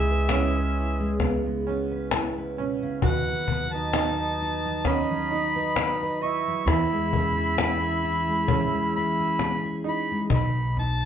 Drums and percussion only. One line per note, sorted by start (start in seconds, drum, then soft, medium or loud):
0.29 cajon slap medium
0.75 cajon slap soft
1.20 cajon bass medium
1.20 cajon slap soft
1.43 cajon slap soft
2.11 cajon slap loud
2.57 cajon slap soft
3.02 cajon bass medium
3.25 cajon slap soft
3.48 cajon bass medium
3.93 cajon slap medium
4.40 cajon slap soft
4.85 cajon bass medium
4.85 cajon slap soft
5.08 cajon slap soft
5.76 cajon slap medium
6.22 cajon slap soft
6.68 cajon bass medium
6.68 cajon slap soft
6.90 cajon slap soft
7.13 cajon bass medium
7.58 cajon slap medium
8.03 cajon slap soft
8.26 cajon slap soft
8.48 cajon bass medium
9.39 cajon slap medium
9.86 cajon slap soft
10.30 cajon bass medium
10.54 cajon slap soft
10.77 cajon bass medium
10.77 cajon slap soft